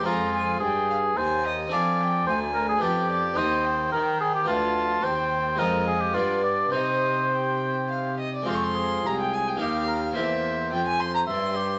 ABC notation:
X:1
M:3/4
L:1/16
Q:1/4=108
K:Fm
V:1 name="Violin"
b2 a2 g2 f2 a2 e2 | [K:Cm] f2 g2 a4 g2 d2 | e2 g6 =a4 | g4 e4 d4 |
e4 g4 f2 e d | [K:Fm] c'/2 d'/2 c'3 b g a g f4 | =e4 g a c' b c'4 |]
V:2 name="Oboe"
F4 A4 c3 z | [K:Cm] d4 c2 B A G4 | c4 B2 A G F4 | c4 B2 A G F2 d2 |
c8- c2 z2 | [K:Fm] c2 A6 G2 B2 | c8 =e2 G2 |]
V:3 name="Harpsichord"
[A,CA]12 | [K:Cm] [CDA]8 [=B,DG]4 | [CEG]8 [=B,F]4 | [CG]4 [A,CF]4 [=B,D]4 |
[CE]12 | [K:Fm] [A,CF]8 [B,EG]4 | [B,CG]12 |]
V:4 name="Harpsichord" clef=bass
F,,4 G,,4 E,,4 | [K:Cm] F,,4 D,,4 F,,4 | E,,4 E,4 D,,4 | E,,4 F,,4 G,,4 |
C,8- C,2 z2 | [K:Fm] F,,4 C,,4 E,,4 | =E,,4 F,,4 G,,4 |]
V:5 name="Cello" clef=bass
F,,4 G,,4 E,,4 | [K:Cm] F,,4 D,,4 F,,4 | E,,4 E,4 D,,4 | E,,4 F,,4 G,,4 |
C,8- C,2 z2 | [K:Fm] F,,4 C,,4 E,,4 | =E,,4 F,,4 G,,4 |]